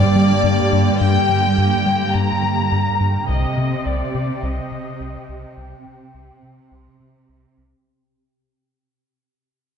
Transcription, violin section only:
Already playing: D5
1.01 G5
2.15 A#5
3.29 D#5
3.86 D5
4.45 D#5
5.59 G5
6.72 C6

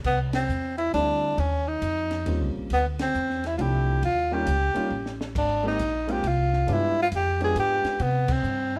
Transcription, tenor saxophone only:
0.06 B3
0.35 C4
0.78 E4
0.94 D4
1.39 C#4
1.68 D#4
2.73 B3
3.02 C4
3.47 E4
3.58 F4
3.62 G4
4.05 F4
4.34 G4
5.38 D4
5.68 D#4
6.11 G4
6.28 F4
6.73 E4
7.03 F4
7.16 G4
7.44 G#4
7.60 G4
8.02 B3
8.32 C4

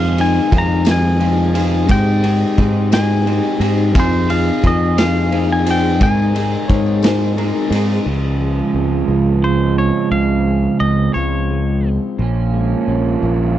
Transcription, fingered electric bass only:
Already playing: F2
0.52 F2
1.89 G#2
2.58 G#2
3.60 G#2
3.95 F2
4.64 F2
6.01 G#2
6.70 G#2
7.71 G#2
8.06 C#2
8.74 C#2
9.08 C#2
10.11 C#2
10.80 C#2
11.16 C#2
12.19 A#1
12.88 A#1
13.23 A#1

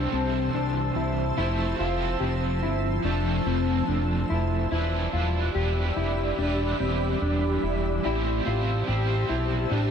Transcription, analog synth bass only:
0.14 C2
0.55 C2
0.96 C2
1.38 F1
1.80 F1
2.21 F1
2.63 G1
3.05 F1
3.46 F1
3.89 F1
4.31 F1
4.72 E1
5.14 E1
5.56 E1
5.97 F1
6.39 E1
6.81 E1
7.22 E1
7.64 E1
8.06 A1
8.47 A1
8.89 A1
9.30 B1
9.72 A1

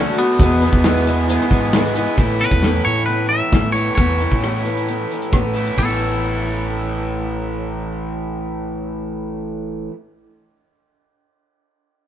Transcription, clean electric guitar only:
Already playing: C#4
0.18 B3
2.41 B4
2.85 C#5
3.06 B4
3.29 E5
3.72 C#5
3.95 C#5
5.78 A4

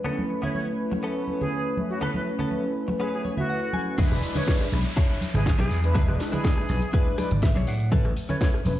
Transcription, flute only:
0.42 C#5
0.54 C#5
1.40 G#4
1.90 F#4
2.01 B4
2.15 B4
3.01 G#4
3.13 G#4
3.38 F#4
4.36 C#5
4.48 C#5
5.35 G#4
5.59 G#4
6.33 G#4
8.29 C#5
8.41 C#5

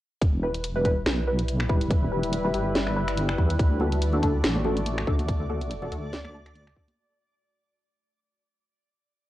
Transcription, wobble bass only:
0.21 E1
1.06 B1
1.69 E1
2.28 D#1
2.54 G1
3.38 E2
3.59 D2
4.44 A1
5.07 D2
5.92 D2

